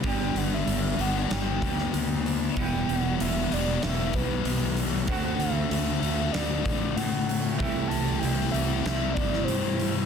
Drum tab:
HH |o-o-o-o-o-o-o-o-|o-o-o-o-o-o-o-o-|o-o-o-o-o-o-o-o-|o-o-o-o-o-o-o-o-|
SD |--------o--o----|--------o-------|--------o-------|--------o--o----|
BD |o---------o-----|o---------o-----|o---------o-----|o---------o-----|